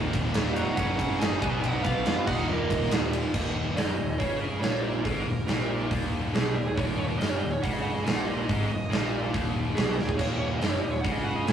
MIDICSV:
0, 0, Header, 1, 6, 480
1, 0, Start_track
1, 0, Key_signature, -6, "minor"
1, 0, Tempo, 427960
1, 1823, Time_signature, 4, 2, 24, 8
1, 12928, End_track
2, 0, Start_track
2, 0, Title_t, "Lead electric guitar"
2, 0, Program_c, 0, 29
2, 608, Note_on_c, 0, 82, 97
2, 838, Note_off_c, 0, 82, 0
2, 852, Note_on_c, 0, 78, 110
2, 1335, Note_on_c, 0, 80, 92
2, 1352, Note_off_c, 0, 78, 0
2, 1804, Note_on_c, 0, 78, 107
2, 1833, Note_off_c, 0, 80, 0
2, 2040, Note_off_c, 0, 78, 0
2, 2045, Note_on_c, 0, 77, 96
2, 2547, Note_off_c, 0, 77, 0
2, 2552, Note_on_c, 0, 78, 88
2, 2785, Note_off_c, 0, 78, 0
2, 2790, Note_on_c, 0, 75, 76
2, 3234, Note_off_c, 0, 75, 0
2, 4223, Note_on_c, 0, 75, 95
2, 4691, Note_off_c, 0, 75, 0
2, 4698, Note_on_c, 0, 73, 80
2, 4931, Note_off_c, 0, 73, 0
2, 4936, Note_on_c, 0, 70, 74
2, 5173, Note_off_c, 0, 70, 0
2, 5178, Note_on_c, 0, 73, 86
2, 5410, Note_off_c, 0, 73, 0
2, 5414, Note_on_c, 0, 70, 77
2, 5654, Note_off_c, 0, 70, 0
2, 5669, Note_on_c, 0, 70, 101
2, 6602, Note_off_c, 0, 70, 0
2, 7110, Note_on_c, 0, 68, 87
2, 7343, Note_off_c, 0, 68, 0
2, 7344, Note_on_c, 0, 70, 83
2, 7464, Note_off_c, 0, 70, 0
2, 7476, Note_on_c, 0, 68, 87
2, 7576, Note_on_c, 0, 73, 86
2, 7590, Note_off_c, 0, 68, 0
2, 7691, Note_off_c, 0, 73, 0
2, 7696, Note_on_c, 0, 70, 79
2, 7826, Note_off_c, 0, 70, 0
2, 7826, Note_on_c, 0, 73, 87
2, 7932, Note_off_c, 0, 73, 0
2, 7937, Note_on_c, 0, 70, 96
2, 8055, Note_off_c, 0, 70, 0
2, 8059, Note_on_c, 0, 75, 85
2, 8172, Note_off_c, 0, 75, 0
2, 8172, Note_on_c, 0, 73, 88
2, 8289, Note_off_c, 0, 73, 0
2, 8293, Note_on_c, 0, 75, 92
2, 8418, Note_off_c, 0, 75, 0
2, 8427, Note_on_c, 0, 73, 86
2, 8545, Note_off_c, 0, 73, 0
2, 8550, Note_on_c, 0, 78, 89
2, 8671, Note_off_c, 0, 78, 0
2, 8671, Note_on_c, 0, 75, 83
2, 8766, Note_off_c, 0, 75, 0
2, 8770, Note_on_c, 0, 78, 80
2, 8897, Note_off_c, 0, 78, 0
2, 8905, Note_on_c, 0, 75, 80
2, 9013, Note_on_c, 0, 80, 98
2, 9024, Note_off_c, 0, 75, 0
2, 9138, Note_off_c, 0, 80, 0
2, 9142, Note_on_c, 0, 78, 85
2, 9260, Note_off_c, 0, 78, 0
2, 9260, Note_on_c, 0, 75, 93
2, 10195, Note_off_c, 0, 75, 0
2, 10939, Note_on_c, 0, 68, 91
2, 11168, Note_on_c, 0, 70, 82
2, 11176, Note_off_c, 0, 68, 0
2, 11274, Note_on_c, 0, 68, 88
2, 11294, Note_off_c, 0, 70, 0
2, 11402, Note_on_c, 0, 73, 102
2, 11407, Note_off_c, 0, 68, 0
2, 11527, Note_off_c, 0, 73, 0
2, 11527, Note_on_c, 0, 70, 93
2, 11647, Note_off_c, 0, 70, 0
2, 11652, Note_on_c, 0, 73, 84
2, 11764, Note_off_c, 0, 73, 0
2, 11764, Note_on_c, 0, 70, 95
2, 11875, Note_off_c, 0, 70, 0
2, 11880, Note_on_c, 0, 75, 92
2, 11996, Note_off_c, 0, 75, 0
2, 12001, Note_on_c, 0, 73, 89
2, 12122, Note_off_c, 0, 73, 0
2, 12122, Note_on_c, 0, 75, 85
2, 12230, Note_off_c, 0, 75, 0
2, 12230, Note_on_c, 0, 73, 100
2, 12348, Note_on_c, 0, 78, 92
2, 12364, Note_off_c, 0, 73, 0
2, 12479, Note_off_c, 0, 78, 0
2, 12483, Note_on_c, 0, 75, 84
2, 12591, Note_off_c, 0, 75, 0
2, 12591, Note_on_c, 0, 78, 88
2, 12739, Note_off_c, 0, 78, 0
2, 12739, Note_on_c, 0, 75, 90
2, 12845, Note_on_c, 0, 80, 102
2, 12859, Note_off_c, 0, 75, 0
2, 12928, Note_off_c, 0, 80, 0
2, 12928, End_track
3, 0, Start_track
3, 0, Title_t, "Lead electric guitar"
3, 0, Program_c, 1, 29
3, 632, Note_on_c, 1, 66, 82
3, 851, Note_off_c, 1, 66, 0
3, 871, Note_on_c, 1, 61, 84
3, 1314, Note_off_c, 1, 61, 0
3, 1352, Note_on_c, 1, 63, 91
3, 1794, Note_off_c, 1, 63, 0
3, 1828, Note_on_c, 1, 63, 80
3, 2049, Note_off_c, 1, 63, 0
3, 2056, Note_on_c, 1, 59, 72
3, 2506, Note_off_c, 1, 59, 0
3, 2576, Note_on_c, 1, 63, 67
3, 2784, Note_off_c, 1, 63, 0
3, 2826, Note_on_c, 1, 58, 65
3, 3253, Note_off_c, 1, 58, 0
3, 12928, End_track
4, 0, Start_track
4, 0, Title_t, "Distorted electric guitar"
4, 0, Program_c, 2, 30
4, 0, Note_on_c, 2, 39, 95
4, 0, Note_on_c, 2, 46, 96
4, 0, Note_on_c, 2, 51, 98
4, 608, Note_off_c, 2, 39, 0
4, 610, Note_off_c, 2, 51, 0
4, 620, Note_off_c, 2, 46, 0
4, 624, Note_on_c, 2, 51, 91
4, 641, Note_on_c, 2, 46, 80
4, 663, Note_on_c, 2, 39, 69
4, 849, Note_off_c, 2, 51, 0
4, 853, Note_off_c, 2, 39, 0
4, 857, Note_off_c, 2, 46, 0
4, 858, Note_on_c, 2, 42, 98
4, 879, Note_on_c, 2, 49, 114
4, 898, Note_on_c, 2, 54, 103
4, 1559, Note_off_c, 2, 49, 0
4, 1564, Note_on_c, 2, 47, 89
4, 1566, Note_off_c, 2, 42, 0
4, 1589, Note_off_c, 2, 54, 0
4, 1593, Note_on_c, 2, 54, 90
4, 1607, Note_on_c, 2, 59, 94
4, 2279, Note_off_c, 2, 47, 0
4, 2294, Note_off_c, 2, 54, 0
4, 2301, Note_off_c, 2, 59, 0
4, 2301, Note_on_c, 2, 47, 90
4, 2321, Note_on_c, 2, 54, 77
4, 2337, Note_on_c, 2, 59, 97
4, 2524, Note_on_c, 2, 39, 89
4, 2528, Note_off_c, 2, 47, 0
4, 2538, Note_off_c, 2, 54, 0
4, 2546, Note_off_c, 2, 59, 0
4, 2550, Note_on_c, 2, 46, 99
4, 2567, Note_on_c, 2, 51, 91
4, 3234, Note_off_c, 2, 39, 0
4, 3247, Note_on_c, 2, 39, 78
4, 3253, Note_off_c, 2, 46, 0
4, 3262, Note_off_c, 2, 51, 0
4, 3270, Note_on_c, 2, 46, 77
4, 3289, Note_on_c, 2, 51, 91
4, 3722, Note_off_c, 2, 39, 0
4, 3734, Note_off_c, 2, 46, 0
4, 3741, Note_on_c, 2, 39, 95
4, 3743, Note_off_c, 2, 51, 0
4, 4207, Note_off_c, 2, 39, 0
4, 4211, Note_on_c, 2, 42, 100
4, 4452, Note_off_c, 2, 42, 0
4, 4471, Note_on_c, 2, 39, 67
4, 4661, Note_off_c, 2, 39, 0
4, 4717, Note_on_c, 2, 49, 102
4, 5184, Note_off_c, 2, 49, 0
4, 5189, Note_on_c, 2, 46, 104
4, 5659, Note_off_c, 2, 46, 0
4, 5664, Note_on_c, 2, 44, 97
4, 5899, Note_off_c, 2, 44, 0
4, 5909, Note_on_c, 2, 39, 73
4, 6101, Note_off_c, 2, 39, 0
4, 6152, Note_on_c, 2, 46, 100
4, 6619, Note_on_c, 2, 39, 105
4, 6624, Note_off_c, 2, 46, 0
4, 7098, Note_off_c, 2, 39, 0
4, 7105, Note_on_c, 2, 47, 100
4, 7341, Note_off_c, 2, 47, 0
4, 7362, Note_on_c, 2, 39, 71
4, 7548, Note_off_c, 2, 39, 0
4, 7608, Note_on_c, 2, 39, 102
4, 8064, Note_off_c, 2, 39, 0
4, 8068, Note_on_c, 2, 42, 112
4, 8303, Note_off_c, 2, 42, 0
4, 8326, Note_on_c, 2, 39, 70
4, 8510, Note_off_c, 2, 39, 0
4, 8559, Note_on_c, 2, 49, 105
4, 9027, Note_off_c, 2, 49, 0
4, 9032, Note_on_c, 2, 46, 114
4, 9504, Note_off_c, 2, 46, 0
4, 9513, Note_on_c, 2, 44, 107
4, 9744, Note_off_c, 2, 44, 0
4, 9758, Note_on_c, 2, 39, 72
4, 9946, Note_off_c, 2, 39, 0
4, 9987, Note_on_c, 2, 46, 108
4, 10456, Note_on_c, 2, 39, 97
4, 10461, Note_off_c, 2, 46, 0
4, 10928, Note_on_c, 2, 47, 94
4, 10935, Note_off_c, 2, 39, 0
4, 11171, Note_off_c, 2, 47, 0
4, 11177, Note_on_c, 2, 39, 68
4, 11374, Note_off_c, 2, 39, 0
4, 11418, Note_on_c, 2, 39, 99
4, 11895, Note_off_c, 2, 39, 0
4, 11901, Note_on_c, 2, 42, 104
4, 12133, Note_off_c, 2, 42, 0
4, 12138, Note_on_c, 2, 39, 72
4, 12334, Note_off_c, 2, 39, 0
4, 12383, Note_on_c, 2, 49, 111
4, 12857, Note_off_c, 2, 49, 0
4, 12871, Note_on_c, 2, 46, 106
4, 12928, Note_off_c, 2, 46, 0
4, 12928, End_track
5, 0, Start_track
5, 0, Title_t, "Picked electric bass"
5, 0, Program_c, 3, 34
5, 152, Note_on_c, 3, 27, 87
5, 326, Note_off_c, 3, 27, 0
5, 395, Note_on_c, 3, 27, 99
5, 568, Note_off_c, 3, 27, 0
5, 635, Note_on_c, 3, 29, 90
5, 808, Note_off_c, 3, 29, 0
5, 875, Note_on_c, 3, 30, 90
5, 1048, Note_off_c, 3, 30, 0
5, 1112, Note_on_c, 3, 30, 84
5, 1286, Note_off_c, 3, 30, 0
5, 1355, Note_on_c, 3, 30, 98
5, 1528, Note_off_c, 3, 30, 0
5, 1599, Note_on_c, 3, 35, 95
5, 1770, Note_off_c, 3, 35, 0
5, 1836, Note_on_c, 3, 35, 105
5, 2009, Note_off_c, 3, 35, 0
5, 2074, Note_on_c, 3, 35, 99
5, 2247, Note_off_c, 3, 35, 0
5, 2315, Note_on_c, 3, 41, 97
5, 2488, Note_off_c, 3, 41, 0
5, 2557, Note_on_c, 3, 27, 89
5, 2730, Note_off_c, 3, 27, 0
5, 2787, Note_on_c, 3, 27, 97
5, 2963, Note_off_c, 3, 27, 0
5, 3034, Note_on_c, 3, 27, 93
5, 3208, Note_off_c, 3, 27, 0
5, 3267, Note_on_c, 3, 27, 95
5, 3621, Note_off_c, 3, 27, 0
5, 3760, Note_on_c, 3, 27, 90
5, 4200, Note_off_c, 3, 27, 0
5, 4240, Note_on_c, 3, 30, 92
5, 4457, Note_off_c, 3, 30, 0
5, 4469, Note_on_c, 3, 27, 75
5, 4692, Note_off_c, 3, 27, 0
5, 4712, Note_on_c, 3, 37, 89
5, 5157, Note_off_c, 3, 37, 0
5, 5184, Note_on_c, 3, 34, 94
5, 5633, Note_off_c, 3, 34, 0
5, 5676, Note_on_c, 3, 32, 90
5, 5896, Note_off_c, 3, 32, 0
5, 5905, Note_on_c, 3, 27, 82
5, 6130, Note_off_c, 3, 27, 0
5, 6148, Note_on_c, 3, 34, 98
5, 6596, Note_off_c, 3, 34, 0
5, 6638, Note_on_c, 3, 27, 90
5, 7081, Note_off_c, 3, 27, 0
5, 7117, Note_on_c, 3, 35, 101
5, 7337, Note_off_c, 3, 35, 0
5, 7367, Note_on_c, 3, 27, 74
5, 7583, Note_off_c, 3, 27, 0
5, 7598, Note_on_c, 3, 27, 97
5, 8041, Note_off_c, 3, 27, 0
5, 8095, Note_on_c, 3, 30, 102
5, 8307, Note_off_c, 3, 30, 0
5, 8339, Note_on_c, 3, 27, 78
5, 8549, Note_off_c, 3, 27, 0
5, 8570, Note_on_c, 3, 37, 90
5, 9007, Note_off_c, 3, 37, 0
5, 9054, Note_on_c, 3, 34, 101
5, 9489, Note_off_c, 3, 34, 0
5, 9524, Note_on_c, 3, 32, 87
5, 9741, Note_off_c, 3, 32, 0
5, 9780, Note_on_c, 3, 27, 84
5, 9989, Note_off_c, 3, 27, 0
5, 9996, Note_on_c, 3, 34, 93
5, 10439, Note_off_c, 3, 34, 0
5, 10491, Note_on_c, 3, 27, 83
5, 10927, Note_off_c, 3, 27, 0
5, 10959, Note_on_c, 3, 35, 95
5, 11177, Note_off_c, 3, 35, 0
5, 11197, Note_on_c, 3, 27, 69
5, 11416, Note_off_c, 3, 27, 0
5, 11439, Note_on_c, 3, 27, 89
5, 11880, Note_off_c, 3, 27, 0
5, 11923, Note_on_c, 3, 30, 93
5, 12139, Note_off_c, 3, 30, 0
5, 12152, Note_on_c, 3, 27, 70
5, 12373, Note_off_c, 3, 27, 0
5, 12389, Note_on_c, 3, 37, 86
5, 12834, Note_off_c, 3, 37, 0
5, 12868, Note_on_c, 3, 34, 95
5, 12928, Note_off_c, 3, 34, 0
5, 12928, End_track
6, 0, Start_track
6, 0, Title_t, "Drums"
6, 150, Note_on_c, 9, 36, 80
6, 151, Note_on_c, 9, 51, 76
6, 164, Note_on_c, 9, 38, 32
6, 262, Note_off_c, 9, 36, 0
6, 263, Note_off_c, 9, 51, 0
6, 276, Note_off_c, 9, 38, 0
6, 383, Note_on_c, 9, 51, 108
6, 397, Note_on_c, 9, 38, 105
6, 496, Note_off_c, 9, 51, 0
6, 509, Note_off_c, 9, 38, 0
6, 630, Note_on_c, 9, 51, 80
6, 742, Note_off_c, 9, 51, 0
6, 863, Note_on_c, 9, 51, 105
6, 867, Note_on_c, 9, 36, 84
6, 975, Note_off_c, 9, 51, 0
6, 980, Note_off_c, 9, 36, 0
6, 1109, Note_on_c, 9, 36, 83
6, 1114, Note_on_c, 9, 51, 77
6, 1222, Note_off_c, 9, 36, 0
6, 1226, Note_off_c, 9, 51, 0
6, 1246, Note_on_c, 9, 38, 35
6, 1358, Note_off_c, 9, 38, 0
6, 1361, Note_on_c, 9, 51, 98
6, 1374, Note_on_c, 9, 38, 122
6, 1473, Note_off_c, 9, 51, 0
6, 1486, Note_off_c, 9, 38, 0
6, 1593, Note_on_c, 9, 36, 107
6, 1596, Note_on_c, 9, 51, 74
6, 1705, Note_off_c, 9, 36, 0
6, 1708, Note_off_c, 9, 51, 0
6, 1835, Note_on_c, 9, 51, 99
6, 1947, Note_off_c, 9, 51, 0
6, 2069, Note_on_c, 9, 51, 68
6, 2070, Note_on_c, 9, 36, 80
6, 2082, Note_on_c, 9, 38, 31
6, 2181, Note_off_c, 9, 51, 0
6, 2182, Note_off_c, 9, 36, 0
6, 2195, Note_off_c, 9, 38, 0
6, 2306, Note_on_c, 9, 51, 98
6, 2320, Note_on_c, 9, 38, 104
6, 2418, Note_off_c, 9, 51, 0
6, 2432, Note_off_c, 9, 38, 0
6, 2548, Note_on_c, 9, 49, 100
6, 2550, Note_on_c, 9, 36, 103
6, 2660, Note_off_c, 9, 49, 0
6, 2662, Note_off_c, 9, 36, 0
6, 3031, Note_on_c, 9, 36, 81
6, 3034, Note_on_c, 9, 51, 75
6, 3143, Note_off_c, 9, 36, 0
6, 3146, Note_off_c, 9, 51, 0
6, 3172, Note_on_c, 9, 38, 34
6, 3267, Note_on_c, 9, 51, 108
6, 3280, Note_off_c, 9, 38, 0
6, 3280, Note_on_c, 9, 38, 121
6, 3379, Note_off_c, 9, 51, 0
6, 3393, Note_off_c, 9, 38, 0
6, 3513, Note_on_c, 9, 51, 78
6, 3625, Note_off_c, 9, 51, 0
6, 3745, Note_on_c, 9, 57, 107
6, 3747, Note_on_c, 9, 36, 106
6, 3858, Note_off_c, 9, 57, 0
6, 3860, Note_off_c, 9, 36, 0
6, 4230, Note_on_c, 9, 46, 59
6, 4243, Note_on_c, 9, 38, 102
6, 4342, Note_off_c, 9, 46, 0
6, 4355, Note_off_c, 9, 38, 0
6, 4709, Note_on_c, 9, 36, 93
6, 4712, Note_on_c, 9, 46, 54
6, 4822, Note_off_c, 9, 36, 0
6, 4824, Note_off_c, 9, 46, 0
6, 5189, Note_on_c, 9, 46, 56
6, 5203, Note_on_c, 9, 38, 108
6, 5301, Note_off_c, 9, 46, 0
6, 5315, Note_off_c, 9, 38, 0
6, 5663, Note_on_c, 9, 46, 56
6, 5665, Note_on_c, 9, 36, 97
6, 5775, Note_off_c, 9, 46, 0
6, 5777, Note_off_c, 9, 36, 0
6, 6146, Note_on_c, 9, 46, 52
6, 6159, Note_on_c, 9, 38, 104
6, 6258, Note_off_c, 9, 46, 0
6, 6271, Note_off_c, 9, 38, 0
6, 6629, Note_on_c, 9, 36, 102
6, 6631, Note_on_c, 9, 46, 55
6, 6741, Note_off_c, 9, 36, 0
6, 6744, Note_off_c, 9, 46, 0
6, 7117, Note_on_c, 9, 46, 55
6, 7130, Note_on_c, 9, 38, 106
6, 7229, Note_off_c, 9, 46, 0
6, 7242, Note_off_c, 9, 38, 0
6, 7599, Note_on_c, 9, 36, 100
6, 7604, Note_on_c, 9, 46, 55
6, 7711, Note_off_c, 9, 36, 0
6, 7716, Note_off_c, 9, 46, 0
6, 8084, Note_on_c, 9, 46, 60
6, 8097, Note_on_c, 9, 38, 94
6, 8196, Note_off_c, 9, 46, 0
6, 8209, Note_off_c, 9, 38, 0
6, 8563, Note_on_c, 9, 36, 102
6, 8563, Note_on_c, 9, 46, 61
6, 8675, Note_off_c, 9, 46, 0
6, 8676, Note_off_c, 9, 36, 0
6, 9046, Note_on_c, 9, 46, 58
6, 9059, Note_on_c, 9, 38, 112
6, 9158, Note_off_c, 9, 46, 0
6, 9171, Note_off_c, 9, 38, 0
6, 9526, Note_on_c, 9, 36, 108
6, 9527, Note_on_c, 9, 46, 54
6, 9638, Note_off_c, 9, 36, 0
6, 9639, Note_off_c, 9, 46, 0
6, 10006, Note_on_c, 9, 46, 51
6, 10019, Note_on_c, 9, 38, 110
6, 10118, Note_off_c, 9, 46, 0
6, 10132, Note_off_c, 9, 38, 0
6, 10479, Note_on_c, 9, 36, 103
6, 10479, Note_on_c, 9, 46, 57
6, 10591, Note_off_c, 9, 36, 0
6, 10591, Note_off_c, 9, 46, 0
6, 10956, Note_on_c, 9, 46, 57
6, 10969, Note_on_c, 9, 38, 110
6, 11068, Note_off_c, 9, 46, 0
6, 11082, Note_off_c, 9, 38, 0
6, 11207, Note_on_c, 9, 38, 58
6, 11314, Note_on_c, 9, 36, 88
6, 11320, Note_off_c, 9, 38, 0
6, 11426, Note_off_c, 9, 36, 0
6, 11430, Note_on_c, 9, 57, 90
6, 11431, Note_on_c, 9, 36, 93
6, 11542, Note_off_c, 9, 57, 0
6, 11543, Note_off_c, 9, 36, 0
6, 11905, Note_on_c, 9, 46, 58
6, 11918, Note_on_c, 9, 38, 100
6, 12017, Note_off_c, 9, 46, 0
6, 12030, Note_off_c, 9, 38, 0
6, 12388, Note_on_c, 9, 46, 54
6, 12389, Note_on_c, 9, 36, 102
6, 12501, Note_off_c, 9, 36, 0
6, 12501, Note_off_c, 9, 46, 0
6, 12868, Note_on_c, 9, 46, 59
6, 12882, Note_on_c, 9, 38, 110
6, 12928, Note_off_c, 9, 38, 0
6, 12928, Note_off_c, 9, 46, 0
6, 12928, End_track
0, 0, End_of_file